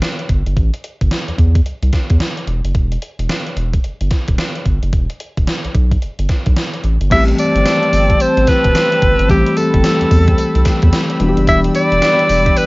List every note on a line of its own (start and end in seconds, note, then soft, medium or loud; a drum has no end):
0.02 snare loud
0.02 closed hi-hat medium
0.19 closed hi-hat medium
0.29 0.43 G1 medium
0.29 kick medium
0.29 closed hi-hat medium
0.46 0.55 G1 medium
0.46 closed hi-hat soft
0.57 0.70 A1 medium
0.57 kick loud
0.57 closed hi-hat medium
0.74 closed hi-hat medium
0.84 closed hi-hat medium
1.01 1.09 G1 loud
1.01 kick medium
1.01 closed hi-hat medium
1.11 snare loud
1.11 closed hi-hat medium
1.28 1.32 E2 soft
1.28 closed hi-hat soft
1.38 1.60 E2 medium
1.38 kick medium
1.38 closed hi-hat medium
1.55 kick medium
1.55 closed hi-hat medium
1.66 1.73 C2 soft
1.66 closed hi-hat medium
1.83 1.91 C2 medium
1.83 closed hi-hat medium
1.93 kick medium
1.93 snare medium
1.93 closed hi-hat medium
2.10 2.19 E2 medium
2.10 kick medium
2.10 closed hi-hat medium
2.20 snare loud
2.20 closed hi-hat medium
2.37 closed hi-hat medium
2.47 2.61 E1 medium
2.47 closed hi-hat medium
2.64 2.73 F#1 medium
2.64 closed hi-hat medium
2.75 2.97 E1 medium
2.75 kick loud
2.75 closed hi-hat medium
2.92 closed hi-hat medium
3.02 closed hi-hat medium
3.19 3.27 E1 medium
3.19 closed hi-hat medium
3.29 snare loud
3.29 closed hi-hat medium
3.46 closed hi-hat soft
3.57 3.79 E1 medium
3.57 closed hi-hat medium
3.73 kick medium
3.73 closed hi-hat medium
3.84 3.91 G1 soft
3.84 closed hi-hat medium
4.01 4.09 G1 medium
4.01 closed hi-hat medium
4.11 kick medium
4.11 snare medium
4.11 closed hi-hat medium
4.28 4.37 E1 medium
4.28 kick loud
4.28 closed hi-hat medium
4.38 snare loud
4.38 closed hi-hat medium
4.55 closed hi-hat medium
4.66 4.79 G1 medium
4.66 kick medium
4.66 closed hi-hat medium
4.83 4.91 F#1 medium
4.83 closed hi-hat medium
4.93 5.07 E1 loud
4.93 kick loud
4.93 closed hi-hat medium
5.10 closed hi-hat soft
5.20 closed hi-hat medium
5.37 5.46 E1 loud
5.37 kick medium
5.37 closed hi-hat medium
5.47 snare loud
5.47 closed hi-hat medium
5.64 5.69 B1 soft
5.64 closed hi-hat medium
5.75 5.97 B1 medium
5.75 kick medium
5.75 closed hi-hat medium
5.92 kick medium
5.92 closed hi-hat medium
6.02 6.09 G1 soft
6.02 closed hi-hat medium
6.19 6.27 G1 medium
6.19 closed hi-hat medium
6.29 kick medium
6.29 snare medium
6.29 closed hi-hat medium
6.46 6.55 B1 medium
6.46 kick loud
6.46 closed hi-hat medium
6.57 snare loud
6.57 closed hi-hat medium
6.74 closed hi-hat medium
6.84 6.98 A1 medium
6.84 closed hi-hat medium
7.01 7.09 G1 loud
7.01 closed hi-hat medium
7.10 7.33 A1 loud
7.10 9.25 E3 medium
7.10 9.25 G3 medium
7.10 9.26 A3 medium
7.10 11.16 C4 medium
7.10 9.26 C4 medium
7.10 9.26 G4 medium
7.10 7.24 E5 loud
7.10 12.66 G5 medium
7.10 9.27 A5 medium
7.10 11.16 E6 medium
7.10 kick loud
7.10 closed hi-hat medium
7.10 crash loud
7.10 tambourine medium
7.28 closed hi-hat medium
7.38 8.23 D5 loud
7.38 closed hi-hat medium
7.38 tambourine medium
7.55 7.64 G1 loud
7.55 closed hi-hat medium
7.66 snare loud
7.66 closed hi-hat medium
7.66 tambourine loud
7.83 closed hi-hat medium
7.93 8.15 G1 loud
7.93 open hi-hat medium
7.93 tambourine medium
8.10 kick loud
8.10 closed hi-hat medium
8.20 8.27 A1 soft
8.20 8.50 C5 loud
8.20 closed hi-hat medium
8.20 tambourine medium
8.37 8.46 A1 medium
8.37 closed hi-hat medium
8.47 9.30 B4 loud
8.47 kick loud
8.47 snare medium
8.47 closed hi-hat medium
8.47 tambourine medium
8.64 8.73 E1 medium
8.64 kick loud
8.64 closed hi-hat medium
8.75 snare loud
8.75 closed hi-hat medium
8.75 tambourine loud
8.92 closed hi-hat medium
9.02 9.16 G1 medium
9.02 kick medium
9.02 closed hi-hat medium
9.19 9.28 G1 loud
9.19 closed hi-hat medium
9.29 9.43 A1 loud
9.29 11.16 E3 medium
9.29 11.16 G3 medium
9.29 11.17 A3 medium
9.29 11.17 C4 medium
9.29 9.59 G4 loud
9.29 11.17 G4 medium
9.29 12.66 B5 medium
9.29 kick loud
9.29 closed hi-hat medium
9.29 tambourine medium
9.46 closed hi-hat medium
9.57 11.21 A4 medium
9.57 closed hi-hat medium
9.57 tambourine medium
9.74 9.82 G1 loud
9.74 kick loud
9.74 closed hi-hat medium
9.84 snare loud
9.84 closed hi-hat medium
9.84 tambourine loud
10.01 10.05 E2 soft
10.01 closed hi-hat medium
10.11 10.33 E2 medium
10.11 kick loud
10.11 open hi-hat medium
10.11 tambourine medium
10.28 kick loud
10.28 closed hi-hat medium
10.38 10.45 C2 soft
10.38 closed hi-hat medium
10.38 tambourine medium
10.55 10.64 C2 medium
10.55 closed hi-hat medium
10.65 kick medium
10.65 snare medium
10.65 closed hi-hat medium
10.65 tambourine medium
10.82 10.91 E2 medium
10.82 kick loud
10.82 closed hi-hat medium
10.93 snare loud
10.93 closed hi-hat medium
10.93 tambourine loud
11.10 closed hi-hat medium
11.20 11.34 E1 loud
11.20 12.66 E3 medium
11.20 12.66 G3 medium
11.20 12.66 B3 medium
11.20 12.66 D4 medium
11.20 11.29 F#4 medium
11.20 12.66 D5 medium
11.20 12.66 E6 medium
11.20 closed hi-hat medium
11.29 12.66 G4 medium
11.37 11.46 F#1 medium
11.37 closed hi-hat medium
11.47 11.70 E1 loud
11.47 11.61 E5 loud
11.47 kick loud
11.47 closed hi-hat medium
11.47 tambourine medium
11.64 closed hi-hat medium
11.75 12.59 D5 loud
11.75 closed hi-hat medium
11.75 tambourine medium
11.92 12.00 E1 medium
11.92 closed hi-hat medium
12.02 snare loud
12.02 closed hi-hat medium
12.02 tambourine loud
12.19 closed hi-hat medium
12.29 12.51 E1 loud
12.29 open hi-hat medium
12.29 tambourine medium
12.46 kick loud
12.46 closed hi-hat medium
12.56 12.64 G1 soft
12.56 12.66 B4 loud
12.56 closed hi-hat medium
12.56 tambourine medium